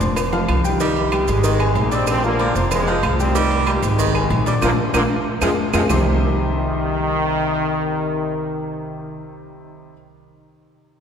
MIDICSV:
0, 0, Header, 1, 6, 480
1, 0, Start_track
1, 0, Key_signature, -3, "minor"
1, 0, Tempo, 318640
1, 1213, Time_signature, 4, 2, 24, 8
1, 16572, End_track
2, 0, Start_track
2, 0, Title_t, "Upright piano"
2, 0, Program_c, 0, 0
2, 16, Note_on_c, 0, 60, 74
2, 21, Note_on_c, 0, 72, 70
2, 27, Note_on_c, 0, 84, 69
2, 408, Note_off_c, 0, 60, 0
2, 411, Note_off_c, 0, 72, 0
2, 415, Note_off_c, 0, 84, 0
2, 490, Note_on_c, 0, 53, 93
2, 494, Note_on_c, 0, 65, 99
2, 499, Note_on_c, 0, 77, 97
2, 884, Note_off_c, 0, 53, 0
2, 887, Note_off_c, 0, 65, 0
2, 890, Note_off_c, 0, 77, 0
2, 967, Note_on_c, 0, 55, 86
2, 969, Note_on_c, 0, 67, 93
2, 976, Note_on_c, 0, 79, 89
2, 1166, Note_off_c, 0, 55, 0
2, 1167, Note_off_c, 0, 67, 0
2, 1171, Note_off_c, 0, 79, 0
2, 1199, Note_on_c, 0, 51, 99
2, 1208, Note_on_c, 0, 63, 88
2, 1211, Note_on_c, 0, 75, 93
2, 1598, Note_off_c, 0, 51, 0
2, 1603, Note_off_c, 0, 63, 0
2, 1604, Note_off_c, 0, 75, 0
2, 1682, Note_on_c, 0, 55, 80
2, 1689, Note_on_c, 0, 67, 79
2, 1692, Note_on_c, 0, 79, 82
2, 2079, Note_off_c, 0, 55, 0
2, 2084, Note_off_c, 0, 67, 0
2, 2085, Note_off_c, 0, 79, 0
2, 2167, Note_on_c, 0, 51, 73
2, 2171, Note_on_c, 0, 63, 88
2, 2174, Note_on_c, 0, 75, 71
2, 2365, Note_off_c, 0, 51, 0
2, 2368, Note_off_c, 0, 63, 0
2, 2369, Note_off_c, 0, 75, 0
2, 2407, Note_on_c, 0, 56, 77
2, 2412, Note_on_c, 0, 68, 88
2, 2415, Note_on_c, 0, 80, 85
2, 2802, Note_off_c, 0, 56, 0
2, 2805, Note_off_c, 0, 68, 0
2, 2807, Note_off_c, 0, 80, 0
2, 2884, Note_on_c, 0, 62, 89
2, 2891, Note_on_c, 0, 74, 94
2, 2897, Note_on_c, 0, 86, 89
2, 3280, Note_off_c, 0, 62, 0
2, 3284, Note_off_c, 0, 74, 0
2, 3287, Note_off_c, 0, 86, 0
2, 3365, Note_on_c, 0, 53, 81
2, 3368, Note_on_c, 0, 65, 82
2, 3376, Note_on_c, 0, 77, 75
2, 3564, Note_off_c, 0, 53, 0
2, 3565, Note_off_c, 0, 65, 0
2, 3570, Note_off_c, 0, 77, 0
2, 3611, Note_on_c, 0, 62, 74
2, 3616, Note_on_c, 0, 74, 77
2, 3619, Note_on_c, 0, 86, 83
2, 3807, Note_off_c, 0, 62, 0
2, 3810, Note_off_c, 0, 74, 0
2, 3812, Note_off_c, 0, 86, 0
2, 3848, Note_on_c, 0, 60, 72
2, 3853, Note_on_c, 0, 72, 83
2, 3857, Note_on_c, 0, 84, 73
2, 4242, Note_off_c, 0, 60, 0
2, 4245, Note_off_c, 0, 72, 0
2, 4247, Note_off_c, 0, 84, 0
2, 4330, Note_on_c, 0, 53, 97
2, 4335, Note_on_c, 0, 65, 105
2, 4340, Note_on_c, 0, 77, 97
2, 4723, Note_off_c, 0, 53, 0
2, 4726, Note_off_c, 0, 65, 0
2, 4729, Note_off_c, 0, 77, 0
2, 4812, Note_on_c, 0, 55, 90
2, 4822, Note_on_c, 0, 67, 94
2, 4825, Note_on_c, 0, 79, 92
2, 5008, Note_off_c, 0, 55, 0
2, 5013, Note_off_c, 0, 67, 0
2, 5015, Note_off_c, 0, 79, 0
2, 5054, Note_on_c, 0, 51, 94
2, 5061, Note_on_c, 0, 63, 94
2, 5066, Note_on_c, 0, 75, 83
2, 5445, Note_off_c, 0, 51, 0
2, 5450, Note_off_c, 0, 63, 0
2, 5452, Note_off_c, 0, 75, 0
2, 5532, Note_on_c, 0, 55, 81
2, 5537, Note_on_c, 0, 67, 79
2, 5541, Note_on_c, 0, 79, 72
2, 5924, Note_off_c, 0, 55, 0
2, 5927, Note_off_c, 0, 67, 0
2, 5929, Note_off_c, 0, 79, 0
2, 6012, Note_on_c, 0, 51, 80
2, 6016, Note_on_c, 0, 63, 85
2, 6024, Note_on_c, 0, 75, 78
2, 6207, Note_off_c, 0, 51, 0
2, 6209, Note_off_c, 0, 63, 0
2, 6214, Note_off_c, 0, 75, 0
2, 6251, Note_on_c, 0, 56, 75
2, 6257, Note_on_c, 0, 68, 79
2, 6263, Note_on_c, 0, 80, 91
2, 6643, Note_off_c, 0, 56, 0
2, 6647, Note_off_c, 0, 68, 0
2, 6650, Note_off_c, 0, 80, 0
2, 6729, Note_on_c, 0, 62, 93
2, 6733, Note_on_c, 0, 74, 91
2, 6738, Note_on_c, 0, 86, 94
2, 6925, Note_off_c, 0, 62, 0
2, 6927, Note_off_c, 0, 74, 0
2, 6931, Note_off_c, 0, 86, 0
2, 6966, Note_on_c, 0, 62, 100
2, 6966, Note_on_c, 0, 70, 111
2, 6967, Note_on_c, 0, 65, 106
2, 7120, Note_off_c, 0, 62, 0
2, 7120, Note_off_c, 0, 70, 0
2, 7121, Note_off_c, 0, 65, 0
2, 7443, Note_on_c, 0, 62, 98
2, 7446, Note_on_c, 0, 65, 100
2, 7447, Note_on_c, 0, 70, 101
2, 7598, Note_off_c, 0, 62, 0
2, 7600, Note_off_c, 0, 65, 0
2, 7601, Note_off_c, 0, 70, 0
2, 8169, Note_on_c, 0, 68, 108
2, 8171, Note_on_c, 0, 60, 100
2, 8171, Note_on_c, 0, 65, 104
2, 8322, Note_off_c, 0, 68, 0
2, 8323, Note_off_c, 0, 60, 0
2, 8323, Note_off_c, 0, 65, 0
2, 8647, Note_on_c, 0, 68, 110
2, 8648, Note_on_c, 0, 65, 108
2, 8649, Note_on_c, 0, 60, 98
2, 8801, Note_off_c, 0, 68, 0
2, 8802, Note_off_c, 0, 60, 0
2, 8802, Note_off_c, 0, 65, 0
2, 8884, Note_on_c, 0, 48, 101
2, 8887, Note_on_c, 0, 55, 91
2, 8889, Note_on_c, 0, 60, 91
2, 8892, Note_on_c, 0, 63, 85
2, 8898, Note_on_c, 0, 67, 92
2, 8898, Note_on_c, 0, 72, 114
2, 14926, Note_off_c, 0, 48, 0
2, 14928, Note_off_c, 0, 55, 0
2, 14929, Note_off_c, 0, 60, 0
2, 14930, Note_off_c, 0, 63, 0
2, 14933, Note_off_c, 0, 67, 0
2, 14933, Note_off_c, 0, 72, 0
2, 16572, End_track
3, 0, Start_track
3, 0, Title_t, "Baritone saxophone"
3, 0, Program_c, 1, 67
3, 1217, Note_on_c, 1, 55, 98
3, 1766, Note_off_c, 1, 55, 0
3, 2170, Note_on_c, 1, 51, 98
3, 2554, Note_off_c, 1, 51, 0
3, 2884, Note_on_c, 1, 55, 74
3, 3269, Note_off_c, 1, 55, 0
3, 3615, Note_on_c, 1, 53, 83
3, 3996, Note_off_c, 1, 53, 0
3, 4333, Note_on_c, 1, 53, 86
3, 4715, Note_off_c, 1, 53, 0
3, 5048, Note_on_c, 1, 55, 109
3, 5599, Note_off_c, 1, 55, 0
3, 6011, Note_on_c, 1, 51, 98
3, 6393, Note_off_c, 1, 51, 0
3, 6725, Note_on_c, 1, 55, 83
3, 6852, Note_off_c, 1, 55, 0
3, 6956, Note_on_c, 1, 53, 106
3, 7075, Note_off_c, 1, 53, 0
3, 7440, Note_on_c, 1, 53, 105
3, 7557, Note_off_c, 1, 53, 0
3, 8159, Note_on_c, 1, 53, 99
3, 8277, Note_off_c, 1, 53, 0
3, 8651, Note_on_c, 1, 53, 99
3, 8765, Note_off_c, 1, 53, 0
3, 8887, Note_on_c, 1, 48, 88
3, 9054, Note_off_c, 1, 48, 0
3, 16572, End_track
4, 0, Start_track
4, 0, Title_t, "Trombone section"
4, 0, Program_c, 2, 61
4, 0, Note_on_c, 2, 46, 61
4, 0, Note_on_c, 2, 50, 63
4, 0, Note_on_c, 2, 53, 92
4, 444, Note_off_c, 2, 50, 0
4, 448, Note_off_c, 2, 46, 0
4, 502, Note_off_c, 2, 53, 0
4, 1001, Note_on_c, 2, 43, 67
4, 1004, Note_on_c, 2, 48, 69
4, 1005, Note_on_c, 2, 51, 92
4, 1659, Note_off_c, 2, 51, 0
4, 1709, Note_on_c, 2, 55, 105
4, 1886, Note_off_c, 2, 43, 0
4, 1887, Note_off_c, 2, 48, 0
4, 1939, Note_on_c, 2, 56, 110
4, 1940, Note_off_c, 2, 55, 0
4, 1940, Note_on_c, 2, 51, 78
4, 1943, Note_on_c, 2, 48, 81
4, 2654, Note_off_c, 2, 56, 0
4, 2666, Note_on_c, 2, 58, 96
4, 2835, Note_off_c, 2, 51, 0
4, 2836, Note_off_c, 2, 48, 0
4, 2882, Note_off_c, 2, 58, 0
4, 2900, Note_on_c, 2, 60, 106
4, 3118, Note_off_c, 2, 60, 0
4, 3147, Note_on_c, 2, 53, 92
4, 3148, Note_on_c, 2, 60, 124
4, 3362, Note_off_c, 2, 53, 0
4, 3363, Note_off_c, 2, 60, 0
4, 3380, Note_on_c, 2, 53, 90
4, 3380, Note_on_c, 2, 58, 117
4, 3383, Note_on_c, 2, 50, 82
4, 3821, Note_off_c, 2, 58, 0
4, 3862, Note_on_c, 2, 58, 101
4, 4045, Note_off_c, 2, 53, 0
4, 4046, Note_off_c, 2, 50, 0
4, 4079, Note_off_c, 2, 58, 0
4, 4109, Note_on_c, 2, 56, 116
4, 4114, Note_on_c, 2, 48, 84
4, 4119, Note_on_c, 2, 53, 83
4, 4546, Note_off_c, 2, 56, 0
4, 4569, Note_off_c, 2, 53, 0
4, 4587, Note_on_c, 2, 53, 104
4, 4818, Note_off_c, 2, 53, 0
4, 4829, Note_on_c, 2, 60, 111
4, 4831, Note_on_c, 2, 51, 76
4, 4839, Note_on_c, 2, 55, 85
4, 5001, Note_off_c, 2, 48, 0
4, 5489, Note_off_c, 2, 60, 0
4, 5549, Note_on_c, 2, 58, 103
4, 5719, Note_off_c, 2, 51, 0
4, 5723, Note_off_c, 2, 55, 0
4, 5779, Note_off_c, 2, 58, 0
4, 5792, Note_on_c, 2, 56, 109
4, 5801, Note_on_c, 2, 48, 82
4, 5802, Note_on_c, 2, 51, 75
4, 6251, Note_off_c, 2, 51, 0
4, 6259, Note_off_c, 2, 48, 0
4, 6260, Note_off_c, 2, 56, 0
4, 6269, Note_on_c, 2, 51, 94
4, 6277, Note_on_c, 2, 44, 66
4, 6277, Note_on_c, 2, 48, 64
4, 6705, Note_off_c, 2, 51, 0
4, 6742, Note_on_c, 2, 50, 88
4, 6753, Note_on_c, 2, 46, 61
4, 6756, Note_on_c, 2, 41, 65
4, 6933, Note_off_c, 2, 44, 0
4, 6933, Note_off_c, 2, 48, 0
4, 6965, Note_off_c, 2, 46, 0
4, 6965, Note_off_c, 2, 50, 0
4, 6966, Note_off_c, 2, 41, 0
4, 6979, Note_on_c, 2, 58, 105
4, 6984, Note_on_c, 2, 50, 108
4, 6984, Note_on_c, 2, 53, 115
4, 7091, Note_off_c, 2, 58, 0
4, 7094, Note_off_c, 2, 50, 0
4, 7094, Note_off_c, 2, 53, 0
4, 7451, Note_on_c, 2, 58, 104
4, 7455, Note_on_c, 2, 53, 106
4, 7459, Note_on_c, 2, 50, 106
4, 7565, Note_off_c, 2, 58, 0
4, 7568, Note_off_c, 2, 53, 0
4, 7571, Note_off_c, 2, 50, 0
4, 8172, Note_on_c, 2, 53, 97
4, 8174, Note_on_c, 2, 48, 99
4, 8176, Note_on_c, 2, 56, 97
4, 8286, Note_off_c, 2, 53, 0
4, 8287, Note_off_c, 2, 48, 0
4, 8289, Note_off_c, 2, 56, 0
4, 8656, Note_on_c, 2, 48, 97
4, 8659, Note_on_c, 2, 56, 91
4, 8660, Note_on_c, 2, 53, 96
4, 8769, Note_off_c, 2, 48, 0
4, 8771, Note_off_c, 2, 53, 0
4, 8771, Note_off_c, 2, 56, 0
4, 8899, Note_on_c, 2, 51, 108
4, 13879, Note_off_c, 2, 51, 0
4, 16572, End_track
5, 0, Start_track
5, 0, Title_t, "Upright bass"
5, 0, Program_c, 3, 32
5, 5, Note_on_c, 3, 29, 95
5, 678, Note_off_c, 3, 29, 0
5, 729, Note_on_c, 3, 36, 102
5, 1845, Note_off_c, 3, 36, 0
5, 1922, Note_on_c, 3, 32, 92
5, 2596, Note_off_c, 3, 32, 0
5, 2643, Note_on_c, 3, 34, 99
5, 3761, Note_off_c, 3, 34, 0
5, 3846, Note_on_c, 3, 29, 104
5, 4517, Note_off_c, 3, 29, 0
5, 4565, Note_on_c, 3, 36, 108
5, 5682, Note_off_c, 3, 36, 0
5, 5761, Note_on_c, 3, 32, 110
5, 6434, Note_off_c, 3, 32, 0
5, 6483, Note_on_c, 3, 34, 115
5, 6931, Note_off_c, 3, 34, 0
5, 6965, Note_on_c, 3, 34, 112
5, 7145, Note_off_c, 3, 34, 0
5, 7440, Note_on_c, 3, 34, 99
5, 7622, Note_off_c, 3, 34, 0
5, 8157, Note_on_c, 3, 41, 109
5, 8341, Note_off_c, 3, 41, 0
5, 8638, Note_on_c, 3, 41, 93
5, 8821, Note_off_c, 3, 41, 0
5, 8882, Note_on_c, 3, 36, 104
5, 14925, Note_off_c, 3, 36, 0
5, 16572, End_track
6, 0, Start_track
6, 0, Title_t, "Drums"
6, 12, Note_on_c, 9, 56, 78
6, 12, Note_on_c, 9, 63, 113
6, 13, Note_on_c, 9, 70, 79
6, 162, Note_off_c, 9, 56, 0
6, 163, Note_off_c, 9, 63, 0
6, 164, Note_off_c, 9, 70, 0
6, 247, Note_on_c, 9, 68, 110
6, 249, Note_on_c, 9, 56, 122
6, 252, Note_on_c, 9, 75, 70
6, 254, Note_on_c, 9, 70, 100
6, 398, Note_off_c, 9, 68, 0
6, 400, Note_off_c, 9, 56, 0
6, 402, Note_off_c, 9, 75, 0
6, 404, Note_off_c, 9, 70, 0
6, 488, Note_on_c, 9, 68, 84
6, 493, Note_on_c, 9, 70, 29
6, 495, Note_on_c, 9, 64, 104
6, 639, Note_off_c, 9, 68, 0
6, 644, Note_off_c, 9, 70, 0
6, 645, Note_off_c, 9, 64, 0
6, 730, Note_on_c, 9, 68, 123
6, 731, Note_on_c, 9, 75, 73
6, 734, Note_on_c, 9, 56, 75
6, 734, Note_on_c, 9, 70, 31
6, 735, Note_on_c, 9, 64, 98
6, 881, Note_off_c, 9, 68, 0
6, 882, Note_off_c, 9, 75, 0
6, 884, Note_off_c, 9, 70, 0
6, 885, Note_off_c, 9, 56, 0
6, 886, Note_off_c, 9, 64, 0
6, 971, Note_on_c, 9, 64, 88
6, 973, Note_on_c, 9, 70, 72
6, 1122, Note_off_c, 9, 64, 0
6, 1124, Note_off_c, 9, 70, 0
6, 1208, Note_on_c, 9, 70, 82
6, 1211, Note_on_c, 9, 56, 99
6, 1214, Note_on_c, 9, 63, 42
6, 1358, Note_off_c, 9, 70, 0
6, 1362, Note_off_c, 9, 56, 0
6, 1365, Note_off_c, 9, 63, 0
6, 1450, Note_on_c, 9, 70, 28
6, 1451, Note_on_c, 9, 68, 69
6, 1454, Note_on_c, 9, 63, 39
6, 1601, Note_off_c, 9, 68, 0
6, 1601, Note_off_c, 9, 70, 0
6, 1605, Note_off_c, 9, 63, 0
6, 1685, Note_on_c, 9, 63, 91
6, 1685, Note_on_c, 9, 68, 106
6, 1688, Note_on_c, 9, 70, 32
6, 1689, Note_on_c, 9, 75, 81
6, 1693, Note_on_c, 9, 56, 77
6, 1836, Note_off_c, 9, 63, 0
6, 1836, Note_off_c, 9, 68, 0
6, 1838, Note_off_c, 9, 70, 0
6, 1840, Note_off_c, 9, 75, 0
6, 1844, Note_off_c, 9, 56, 0
6, 1924, Note_on_c, 9, 70, 73
6, 1926, Note_on_c, 9, 56, 75
6, 1930, Note_on_c, 9, 68, 87
6, 1934, Note_on_c, 9, 63, 36
6, 2075, Note_off_c, 9, 70, 0
6, 2076, Note_off_c, 9, 56, 0
6, 2081, Note_off_c, 9, 68, 0
6, 2084, Note_off_c, 9, 63, 0
6, 2164, Note_on_c, 9, 70, 108
6, 2166, Note_on_c, 9, 56, 115
6, 2173, Note_on_c, 9, 63, 41
6, 2315, Note_off_c, 9, 70, 0
6, 2317, Note_off_c, 9, 56, 0
6, 2323, Note_off_c, 9, 63, 0
6, 2406, Note_on_c, 9, 68, 107
6, 2407, Note_on_c, 9, 70, 30
6, 2410, Note_on_c, 9, 75, 73
6, 2415, Note_on_c, 9, 63, 39
6, 2557, Note_off_c, 9, 68, 0
6, 2558, Note_off_c, 9, 70, 0
6, 2561, Note_off_c, 9, 75, 0
6, 2565, Note_off_c, 9, 63, 0
6, 2640, Note_on_c, 9, 66, 74
6, 2640, Note_on_c, 9, 68, 97
6, 2646, Note_on_c, 9, 56, 67
6, 2646, Note_on_c, 9, 63, 89
6, 2649, Note_on_c, 9, 70, 31
6, 2791, Note_off_c, 9, 66, 0
6, 2791, Note_off_c, 9, 68, 0
6, 2796, Note_off_c, 9, 56, 0
6, 2797, Note_off_c, 9, 63, 0
6, 2800, Note_off_c, 9, 70, 0
6, 2886, Note_on_c, 9, 56, 72
6, 2888, Note_on_c, 9, 70, 81
6, 3037, Note_off_c, 9, 56, 0
6, 3039, Note_off_c, 9, 70, 0
6, 3119, Note_on_c, 9, 70, 94
6, 3122, Note_on_c, 9, 68, 100
6, 3125, Note_on_c, 9, 75, 74
6, 3126, Note_on_c, 9, 56, 100
6, 3128, Note_on_c, 9, 63, 41
6, 3269, Note_off_c, 9, 70, 0
6, 3273, Note_off_c, 9, 68, 0
6, 3276, Note_off_c, 9, 75, 0
6, 3277, Note_off_c, 9, 56, 0
6, 3279, Note_off_c, 9, 63, 0
6, 3364, Note_on_c, 9, 70, 27
6, 3373, Note_on_c, 9, 63, 41
6, 3515, Note_off_c, 9, 70, 0
6, 3524, Note_off_c, 9, 63, 0
6, 3600, Note_on_c, 9, 68, 94
6, 3608, Note_on_c, 9, 56, 76
6, 3608, Note_on_c, 9, 63, 99
6, 3611, Note_on_c, 9, 70, 32
6, 3751, Note_off_c, 9, 68, 0
6, 3758, Note_off_c, 9, 63, 0
6, 3759, Note_off_c, 9, 56, 0
6, 3761, Note_off_c, 9, 70, 0
6, 3847, Note_on_c, 9, 63, 34
6, 3848, Note_on_c, 9, 56, 74
6, 3851, Note_on_c, 9, 70, 76
6, 3998, Note_off_c, 9, 56, 0
6, 3998, Note_off_c, 9, 63, 0
6, 4001, Note_off_c, 9, 70, 0
6, 4083, Note_on_c, 9, 68, 102
6, 4087, Note_on_c, 9, 63, 42
6, 4087, Note_on_c, 9, 64, 96
6, 4088, Note_on_c, 9, 70, 98
6, 4090, Note_on_c, 9, 56, 121
6, 4092, Note_on_c, 9, 75, 68
6, 4234, Note_off_c, 9, 68, 0
6, 4238, Note_off_c, 9, 63, 0
6, 4238, Note_off_c, 9, 64, 0
6, 4239, Note_off_c, 9, 70, 0
6, 4241, Note_off_c, 9, 56, 0
6, 4243, Note_off_c, 9, 75, 0
6, 4323, Note_on_c, 9, 68, 82
6, 4325, Note_on_c, 9, 63, 38
6, 4331, Note_on_c, 9, 70, 27
6, 4473, Note_off_c, 9, 68, 0
6, 4475, Note_off_c, 9, 63, 0
6, 4482, Note_off_c, 9, 70, 0
6, 4563, Note_on_c, 9, 68, 116
6, 4565, Note_on_c, 9, 63, 83
6, 4569, Note_on_c, 9, 56, 80
6, 4570, Note_on_c, 9, 70, 29
6, 4574, Note_on_c, 9, 75, 76
6, 4714, Note_off_c, 9, 68, 0
6, 4716, Note_off_c, 9, 63, 0
6, 4720, Note_off_c, 9, 56, 0
6, 4720, Note_off_c, 9, 70, 0
6, 4724, Note_off_c, 9, 75, 0
6, 4808, Note_on_c, 9, 63, 88
6, 4817, Note_on_c, 9, 70, 73
6, 4958, Note_off_c, 9, 63, 0
6, 4968, Note_off_c, 9, 70, 0
6, 5050, Note_on_c, 9, 56, 108
6, 5052, Note_on_c, 9, 63, 39
6, 5052, Note_on_c, 9, 70, 89
6, 5200, Note_off_c, 9, 56, 0
6, 5203, Note_off_c, 9, 63, 0
6, 5203, Note_off_c, 9, 70, 0
6, 5284, Note_on_c, 9, 68, 75
6, 5289, Note_on_c, 9, 70, 26
6, 5292, Note_on_c, 9, 63, 38
6, 5434, Note_off_c, 9, 68, 0
6, 5440, Note_off_c, 9, 70, 0
6, 5442, Note_off_c, 9, 63, 0
6, 5521, Note_on_c, 9, 68, 115
6, 5528, Note_on_c, 9, 56, 74
6, 5530, Note_on_c, 9, 75, 80
6, 5533, Note_on_c, 9, 63, 110
6, 5534, Note_on_c, 9, 70, 35
6, 5672, Note_off_c, 9, 68, 0
6, 5678, Note_off_c, 9, 56, 0
6, 5680, Note_off_c, 9, 75, 0
6, 5684, Note_off_c, 9, 63, 0
6, 5684, Note_off_c, 9, 70, 0
6, 5764, Note_on_c, 9, 56, 74
6, 5767, Note_on_c, 9, 68, 89
6, 5767, Note_on_c, 9, 70, 84
6, 5774, Note_on_c, 9, 63, 39
6, 5915, Note_off_c, 9, 56, 0
6, 5917, Note_off_c, 9, 68, 0
6, 5918, Note_off_c, 9, 70, 0
6, 5925, Note_off_c, 9, 63, 0
6, 6006, Note_on_c, 9, 56, 122
6, 6011, Note_on_c, 9, 70, 107
6, 6016, Note_on_c, 9, 63, 39
6, 6157, Note_off_c, 9, 56, 0
6, 6161, Note_off_c, 9, 70, 0
6, 6166, Note_off_c, 9, 63, 0
6, 6248, Note_on_c, 9, 63, 36
6, 6248, Note_on_c, 9, 68, 95
6, 6251, Note_on_c, 9, 75, 80
6, 6255, Note_on_c, 9, 70, 29
6, 6399, Note_off_c, 9, 63, 0
6, 6399, Note_off_c, 9, 68, 0
6, 6402, Note_off_c, 9, 75, 0
6, 6405, Note_off_c, 9, 70, 0
6, 6483, Note_on_c, 9, 56, 78
6, 6484, Note_on_c, 9, 63, 83
6, 6485, Note_on_c, 9, 68, 100
6, 6494, Note_on_c, 9, 70, 31
6, 6634, Note_off_c, 9, 56, 0
6, 6635, Note_off_c, 9, 63, 0
6, 6635, Note_off_c, 9, 68, 0
6, 6644, Note_off_c, 9, 70, 0
6, 6722, Note_on_c, 9, 56, 72
6, 6729, Note_on_c, 9, 70, 73
6, 6873, Note_off_c, 9, 56, 0
6, 6880, Note_off_c, 9, 70, 0
6, 6959, Note_on_c, 9, 70, 99
6, 6961, Note_on_c, 9, 56, 91
6, 6963, Note_on_c, 9, 63, 115
6, 6965, Note_on_c, 9, 75, 103
6, 6966, Note_on_c, 9, 65, 91
6, 7109, Note_off_c, 9, 70, 0
6, 7112, Note_off_c, 9, 56, 0
6, 7114, Note_off_c, 9, 63, 0
6, 7115, Note_off_c, 9, 75, 0
6, 7117, Note_off_c, 9, 65, 0
6, 7438, Note_on_c, 9, 56, 116
6, 7441, Note_on_c, 9, 65, 107
6, 7442, Note_on_c, 9, 70, 107
6, 7444, Note_on_c, 9, 75, 117
6, 7450, Note_on_c, 9, 63, 107
6, 7589, Note_off_c, 9, 56, 0
6, 7591, Note_off_c, 9, 65, 0
6, 7593, Note_off_c, 9, 70, 0
6, 7595, Note_off_c, 9, 75, 0
6, 7601, Note_off_c, 9, 63, 0
6, 8156, Note_on_c, 9, 56, 99
6, 8157, Note_on_c, 9, 70, 93
6, 8159, Note_on_c, 9, 75, 110
6, 8160, Note_on_c, 9, 65, 108
6, 8165, Note_on_c, 9, 63, 100
6, 8307, Note_off_c, 9, 56, 0
6, 8308, Note_off_c, 9, 70, 0
6, 8310, Note_off_c, 9, 75, 0
6, 8311, Note_off_c, 9, 65, 0
6, 8316, Note_off_c, 9, 63, 0
6, 8639, Note_on_c, 9, 70, 94
6, 8640, Note_on_c, 9, 75, 117
6, 8642, Note_on_c, 9, 56, 101
6, 8643, Note_on_c, 9, 65, 113
6, 8647, Note_on_c, 9, 63, 113
6, 8790, Note_off_c, 9, 70, 0
6, 8791, Note_off_c, 9, 75, 0
6, 8793, Note_off_c, 9, 56, 0
6, 8793, Note_off_c, 9, 65, 0
6, 8798, Note_off_c, 9, 63, 0
6, 8879, Note_on_c, 9, 75, 108
6, 8885, Note_on_c, 9, 61, 90
6, 8885, Note_on_c, 9, 70, 109
6, 8887, Note_on_c, 9, 64, 124
6, 8887, Note_on_c, 9, 66, 97
6, 9030, Note_off_c, 9, 75, 0
6, 9035, Note_off_c, 9, 70, 0
6, 9036, Note_off_c, 9, 61, 0
6, 9037, Note_off_c, 9, 64, 0
6, 9038, Note_off_c, 9, 66, 0
6, 16572, End_track
0, 0, End_of_file